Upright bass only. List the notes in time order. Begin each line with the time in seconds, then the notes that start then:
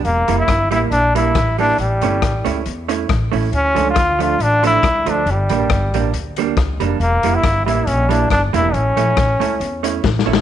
0.05 E1
0.29 F1
0.48 G1
0.70 A1
0.91 A#1
1.35 A1
1.78 A1
2.01 G1
2.22 A1
2.45 C#2
2.66 E2
3.10 A1
3.33 A1
3.52 D2
3.77 C#2
3.96 D2
4.39 A1
4.83 C#2
5.06 D2
5.26 G1
5.50 A1
5.70 G1
5.92 A1
6.13 D2
6.56 C#2
6.80 F1
7.00 E1
7.23 F1
7.43 G1
7.66 A1
7.87 A#1
8.30 G1
8.54 E1
8.74 A1
8.96 A#1
9.17 A1
9.40 C#2
9.60 E2
10.04 A1
10.27 A1